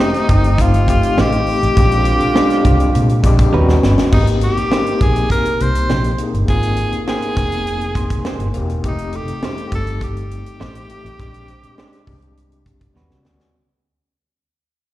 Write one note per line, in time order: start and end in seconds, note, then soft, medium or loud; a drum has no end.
0.00 1.43 D#3 medium
0.00 0.21 A3 medium
0.00 0.87 A3 medium
0.00 0.88 C4 medium
0.00 1.43 C4 medium
0.00 0.22 D#4 medium
0.00 0.63 D#4 loud
0.00 0.89 D#4 medium
0.00 0.02 G4 medium
0.00 1.43 G4 medium
0.00 0.22 G4 medium
0.00 0.58 G4 medium
0.00 0.22 C5 medium
0.00 snare loud
0.14 snare soft
0.14 closed hi-hat soft
0.29 0.99 G1 medium
0.29 kick loud
0.29 closed hi-hat medium
0.44 closed hi-hat medium
0.58 1.22 F4 loud
0.58 kick medium
0.58 closed hi-hat medium
0.74 closed hi-hat soft
0.87 1.44 A3 medium
0.87 1.45 C4 medium
0.87 1.45 D#4 medium
0.87 1.46 G4 medium
0.87 kick medium
0.87 closed hi-hat medium
1.03 closed hi-hat medium
1.18 1.41 A1 loud
1.18 1.39 A3 medium
1.18 1.40 D#4 medium
1.18 1.40 G4 medium
1.18 3.55 G4 loud
1.18 1.40 C5 medium
1.18 2.03 D#5 medium
1.18 snare loud
1.32 closed hi-hat soft
1.46 open hi-hat medium
1.63 1.74 A1 medium
1.63 closed hi-hat soft
1.76 2.11 A#1 loud
1.76 3.21 D3 medium
1.76 2.14 G#3 medium
1.76 2.14 C4 medium
1.76 3.21 C4 medium
1.76 2.15 D4 medium
1.76 3.21 F4 medium
1.76 2.15 G4 medium
1.76 kick loud
1.76 closed hi-hat medium
1.91 closed hi-hat medium
2.05 closed hi-hat medium
2.20 muted fingered electric bass stroke soft
2.20 closed hi-hat soft
2.34 2.91 G#3 medium
2.34 2.57 G#3 medium
2.34 2.92 C4 medium
2.34 2.57 D4 medium
2.34 2.92 D4 medium
2.34 2.57 G4 medium
2.34 2.93 G4 loud
2.34 2.58 C5 medium
2.34 snare loud
2.50 snare soft
2.50 closed hi-hat soft
2.65 2.88 C2 loud
2.65 kick loud
2.65 closed hi-hat medium
2.80 closed hi-hat soft
2.95 3.25 A#2 loud
2.95 closed hi-hat medium
3.09 closed hi-hat medium
3.23 3.47 A#1 medium
3.23 3.53 G#3 medium
3.23 3.53 C4 medium
3.23 3.54 D4 medium
3.23 3.54 G4 medium
3.23 3.51 F5 medium
3.23 kick medium
3.23 closed hi-hat medium
3.39 kick loud
3.39 closed hi-hat medium
3.53 3.77 D#2 loud
3.53 3.82 B2 medium
3.53 3.75 G3 medium
3.53 4.00 G3 medium
3.53 3.82 G3 medium
3.53 4.01 B3 medium
3.53 3.75 C#4 medium
3.53 4.02 C#4 medium
3.53 3.82 D#4 medium
3.53 3.75 F#4 medium
3.53 4.02 F#4 medium
3.53 4.38 B4 medium
3.53 3.76 B4 medium
3.53 3.81 G5 medium
3.69 snare medium
3.74 4.56 D#5 medium
3.83 3.95 G1 medium
3.83 4.11 B5 medium
3.83 snare medium
3.98 snare loud
4.11 4.47 G#1 medium
4.11 4.49 A#3 medium
4.11 4.50 C4 medium
4.11 4.51 D#4 medium
4.11 4.26 D#4 medium
4.11 5.65 G4 medium
4.11 4.51 G4 medium
4.11 kick loud
4.11 crash loud
4.27 closed hi-hat medium
4.41 5.04 G4 loud
4.41 closed hi-hat medium
4.57 muted fingered electric bass stroke soft
4.57 closed hi-hat soft
4.70 5.46 A#3 medium
4.70 4.93 A#3 medium
4.70 5.47 C4 medium
4.70 5.47 D#4 medium
4.70 4.93 D#4 medium
4.70 4.94 G4 medium
4.70 5.48 G4 medium
4.70 4.94 C5 medium
4.70 snare loud
4.86 closed hi-hat soft
5.01 5.24 A#1 loud
5.01 5.31 G#4 loud
5.01 kick loud
5.01 closed hi-hat medium
5.16 closed hi-hat soft
5.30 5.63 A#4 loud
5.30 kick medium
5.30 closed hi-hat medium
5.45 muted fingered electric bass stroke soft
5.45 closed hi-hat medium
5.60 5.83 C2 medium
5.60 6.20 C5 loud
5.60 closed hi-hat medium
5.75 closed hi-hat medium
5.89 6.13 A#1 medium
5.89 6.11 A#3 medium
5.89 6.11 D#4 medium
5.89 6.12 G4 medium
5.89 6.12 C5 medium
5.89 snare loud
6.04 closed hi-hat medium
6.18 6.37 A#3 medium
6.18 6.38 C4 medium
6.18 6.38 D#4 medium
6.18 6.39 G#4 medium
6.18 closed hi-hat medium
6.34 6.45 G1 loud
6.34 closed hi-hat soft
6.48 6.83 G#1 loud
6.48 6.86 A#3 medium
6.48 6.86 C4 medium
6.48 6.87 D#4 medium
6.48 8.01 F4 medium
6.48 7.03 G#4 loud
6.48 6.87 G#4 medium
6.48 kick loud
6.48 closed hi-hat medium
6.63 closed hi-hat medium
6.76 closed hi-hat medium
6.92 muted fingered electric bass stroke soft
6.92 closed hi-hat soft
7.06 7.82 A#3 medium
7.06 7.29 A#3 medium
7.06 7.14 B3 soft
7.06 7.83 D#4 medium
7.06 7.29 D#4 medium
7.06 7.30 G4 medium
7.06 8.51 G#4 loud
7.06 7.30 C5 medium
7.06 7.84 G5 medium
7.06 snare loud
7.14 7.86 C4 medium
7.22 closed hi-hat medium
7.37 8.07 F1 loud
7.37 kick loud
7.37 closed hi-hat medium
7.52 closed hi-hat soft
7.67 closed hi-hat medium
7.81 closed hi-hat soft
7.95 8.23 C6 medium
7.95 kick medium
7.95 closed hi-hat medium
8.10 kick loud
8.10 closed hi-hat medium
8.25 8.47 A#3 medium
8.25 8.47 D#4 medium
8.25 8.48 G4 medium
8.25 8.48 C5 medium
8.25 8.53 G#5 medium
8.25 snare loud
8.40 8.51 G1 medium
8.40 closed hi-hat medium
8.54 8.78 E1 medium
8.54 8.73 A#3 medium
8.54 8.73 C4 medium
8.54 8.74 D#4 medium
8.54 8.74 G4 medium
8.54 8.82 G5 medium
8.54 closed hi-hat medium
8.70 closed hi-hat soft
8.83 9.18 F1 loud
8.83 9.21 A3 medium
8.83 9.21 C4 medium
8.83 9.22 D#4 medium
8.83 9.23 G4 medium
8.83 kick loud
8.83 closed hi-hat medium
8.88 9.18 D#4 medium
8.98 closed hi-hat medium
9.13 9.73 G4 loud
9.13 10.66 A4 medium
9.13 closed hi-hat medium
9.28 muted fingered electric bass stroke soft
9.28 closed hi-hat medium
9.42 9.49 G3 medium
9.42 9.65 A3 medium
9.42 10.18 C4 medium
9.42 10.19 D#4 medium
9.42 9.65 D#4 medium
9.42 10.19 G4 medium
9.42 9.65 G4 medium
9.42 9.66 C5 medium
9.42 snare loud
9.48 10.21 A3 medium
9.58 closed hi-hat soft
9.72 10.42 G1 medium
9.72 10.01 A4 loud
9.72 kick loud
9.72 closed hi-hat medium
9.87 closed hi-hat medium
10.01 12.93 G4 loud
10.01 kick medium
10.01 closed hi-hat medium
10.17 closed hi-hat soft
10.31 11.46 G4 soft
10.31 closed hi-hat medium
10.46 closed hi-hat medium
10.60 10.84 A1 medium
10.60 10.82 A3 medium
10.60 10.82 D#4 medium
10.60 10.82 G4 medium
10.60 10.82 C5 medium
10.60 snare loud
10.75 closed hi-hat medium
10.88 11.08 A3 medium
10.88 11.08 C4 medium
10.88 11.09 D#4 medium
10.88 11.09 G4 medium
10.88 closed hi-hat medium
11.05 11.16 A1 medium
11.05 closed hi-hat soft
11.17 11.54 A#1 loud
11.17 11.56 G#3 medium
11.17 11.56 C4 medium
11.17 11.57 D4 medium
11.17 11.57 G4 medium
11.17 kick loud
11.17 closed hi-hat medium
11.34 closed hi-hat medium
11.48 13.01 C5 medium
11.48 closed hi-hat medium
11.63 muted fingered electric bass stroke soft
11.63 closed hi-hat soft
11.76 12.52 G#3 medium
11.76 12.00 G#3 medium
11.76 12.53 C4 medium
11.76 12.53 D4 medium
11.76 12.00 D4 medium
11.76 12.54 G4 medium
11.76 12.01 G4 medium
11.76 snare loud
11.80 12.01 C5 medium
11.93 snare soft
11.93 closed hi-hat soft
12.07 12.77 C2 medium
12.07 kick loud
12.07 open hi-hat soft
12.22 closed hi-hat soft
12.37 closed hi-hat medium
12.52 closed hi-hat medium
12.66 kick medium
12.66 closed hi-hat medium
12.81 kick loud
12.81 closed hi-hat medium
12.94 13.07 D#2 medium
12.94 13.18 G3 medium
12.94 13.17 G3 medium
12.94 13.19 B3 medium
12.94 13.19 C#4 medium
12.94 13.18 C#4 medium
12.94 13.20 F#4 medium
12.94 13.18 F#4 medium
12.94 13.18 B4 medium
12.94 snare medium
13.11 13.22 C#2 medium
13.11 snare medium
13.23 13.48 D2 medium
13.23 13.43 G3 medium
13.23 13.44 B3 medium
13.23 13.44 C#4 medium
13.23 13.45 F#4 medium
13.23 snare medium
13.40 snare medium